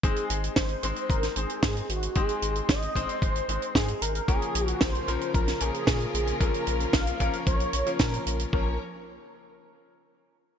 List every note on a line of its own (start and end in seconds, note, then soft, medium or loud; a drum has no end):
0.03 0.13 G#1 loud
0.03 0.80 G#3 medium
0.03 0.80 C4 medium
0.03 0.80 D#4 medium
0.03 0.53 G#4 loud
0.03 0.80 C5 loud
0.03 kick loud
0.03 closed hi-hat medium
0.16 closed hi-hat medium
0.30 0.49 G#1 loud
0.30 closed hi-hat medium
0.44 closed hi-hat medium
0.56 0.75 G#1 loud
0.56 1.11 C5 medium
0.56 kick loud
0.56 snare loud
0.56 closed hi-hat medium
0.69 closed hi-hat soft
0.83 0.92 G#1 medium
0.83 1.33 G#3 loud
0.83 1.33 C4 medium
0.83 1.33 D#4 medium
0.83 1.33 C5 loud
0.83 closed hi-hat medium
0.96 closed hi-hat soft
1.10 1.28 G#1 medium
1.10 1.38 A#4 medium
1.10 kick loud
1.10 closed hi-hat medium
1.23 snare soft
1.23 closed hi-hat medium
1.36 1.45 G#1 medium
1.36 2.13 G#3 medium
1.36 2.13 C4 medium
1.36 2.13 D#4 medium
1.36 1.91 G#4 medium
1.36 2.13 C5 medium
1.36 closed hi-hat loud
1.50 closed hi-hat medium
1.63 1.81 G#2 loud
1.63 kick loud
1.63 snare loud
1.63 closed hi-hat medium
1.77 closed hi-hat medium
1.89 2.08 G#1 medium
1.89 2.16 F#4 medium
1.89 closed hi-hat medium
2.03 closed hi-hat medium
2.15 2.25 G#1 loud
2.15 2.92 G#3 medium
2.15 2.92 C4 medium
2.15 2.92 D#4 medium
2.15 2.65 G#4 loud
2.15 2.92 C5 loud
2.15 kick loud
2.15 closed hi-hat medium
2.29 closed hi-hat medium
2.42 2.61 G#1 loud
2.42 closed hi-hat loud
2.56 closed hi-hat medium
2.69 2.88 G#1 loud
2.69 3.18 D#5 loud
2.69 kick loud
2.69 snare loud
2.69 closed hi-hat medium
2.82 closed hi-hat soft
2.95 3.05 G#1 medium
2.95 3.45 G#3 medium
2.95 3.45 C4 medium
2.95 3.45 D#4 medium
2.95 3.45 C5 loud
2.95 kick medium
2.95 closed hi-hat medium
3.09 closed hi-hat medium
3.22 3.41 G#1 medium
3.22 3.77 C5 loud
3.22 kick loud
3.22 closed hi-hat medium
3.36 closed hi-hat medium
3.48 3.58 G#1 medium
3.48 4.25 G#3 medium
3.48 4.25 C4 medium
3.48 4.25 D#4 medium
3.48 4.25 C5 medium
3.48 closed hi-hat medium
3.62 closed hi-hat medium
3.75 3.94 G#2 loud
3.75 4.01 G#4 loud
3.75 kick loud
3.75 snare loud
3.75 closed hi-hat medium
3.88 closed hi-hat medium
4.02 4.20 G#1 medium
4.02 4.26 A#4 medium
4.02 closed hi-hat loud
4.15 closed hi-hat medium
4.28 4.38 A#1 loud
4.28 8.49 C#3 medium
4.28 8.49 F3 medium
4.28 5.05 F3 medium
4.28 8.49 A#3 medium
4.28 5.05 A#3 medium
4.28 5.05 C#4 medium
4.28 8.49 F4 medium
4.28 4.67 G#4 loud
4.28 8.49 A#4 medium
4.28 5.05 A#4 loud
4.28 kick loud
4.28 closed hi-hat medium
4.42 closed hi-hat medium
4.55 4.73 A#1 loud
4.55 closed hi-hat loud
4.67 4.83 F#4 loud
4.67 closed hi-hat medium
4.81 5.00 A#1 loud
4.81 5.36 C5 loud
4.81 kick loud
4.81 snare loud
4.81 closed hi-hat medium
4.95 closed hi-hat soft
5.08 5.17 A#1 medium
5.08 5.58 F3 loud
5.08 5.58 A#3 medium
5.08 5.58 C#4 medium
5.08 5.58 A#4 loud
5.08 closed hi-hat medium
5.21 closed hi-hat medium
5.34 5.53 A#1 medium
5.34 5.63 A#4 loud
5.34 kick loud
5.34 closed hi-hat medium
5.48 snare soft
5.48 closed hi-hat medium
5.60 5.70 A#1 medium
5.60 6.37 F3 medium
5.60 6.37 A#3 medium
5.60 6.37 C#4 medium
5.60 6.14 G#4 loud
5.60 6.37 A#4 medium
5.60 closed hi-hat medium
5.74 closed hi-hat medium
5.87 6.06 A#2 loud
5.87 kick loud
5.87 snare loud
5.87 closed hi-hat medium
6.00 closed hi-hat medium
6.14 6.33 A#1 medium
6.14 6.39 G#4 loud
6.14 closed hi-hat medium
6.27 closed hi-hat medium
6.40 6.50 A#1 loud
6.40 7.17 F3 medium
6.40 7.17 A#3 medium
6.40 7.17 C#4 medium
6.40 7.17 A#4 loud
6.40 6.95 A#4 loud
6.40 kick loud
6.40 closed hi-hat medium
6.54 closed hi-hat medium
6.67 6.86 A#1 loud
6.67 closed hi-hat medium
6.80 closed hi-hat soft
6.93 7.12 A#1 loud
6.93 7.46 F5 loud
6.93 kick loud
6.93 snare loud
6.93 closed hi-hat medium
7.07 closed hi-hat medium
7.20 7.30 A#1 medium
7.20 7.70 F3 loud
7.20 7.70 A#3 medium
7.20 7.70 C#4 medium
7.20 7.70 A#4 loud
7.20 kick medium
7.20 closed hi-hat medium
7.33 closed hi-hat medium
7.47 7.65 A#1 medium
7.47 8.01 C#5 loud
7.47 kick loud
7.47 closed hi-hat medium
7.60 closed hi-hat medium
7.73 7.83 A#1 loud
7.73 closed hi-hat medium
7.86 7.97 F3 medium
7.86 7.97 A#3 medium
7.86 7.97 C#4 medium
7.86 7.97 A#4 medium
7.86 closed hi-hat soft
7.99 8.19 A#2 loud
7.99 8.50 F3 medium
7.99 8.50 A#3 medium
7.99 8.50 C#4 medium
7.99 8.40 A#4 medium
7.99 8.50 A#4 medium
7.99 kick loud
7.99 snare loud
7.99 closed hi-hat medium
8.14 closed hi-hat medium
8.26 8.45 A#1 medium
8.26 closed hi-hat loud
8.39 closed hi-hat medium
8.53 8.78 A#1 loud
8.53 8.73 F3 medium
8.53 8.78 F3 medium
8.53 8.78 A#3 medium
8.53 8.73 A#3 medium
8.53 8.73 C#4 medium
8.53 8.78 C#4 medium
8.53 8.78 A#4 medium
8.53 8.73 A#4 medium
8.53 8.78 C#5 medium
8.53 kick loud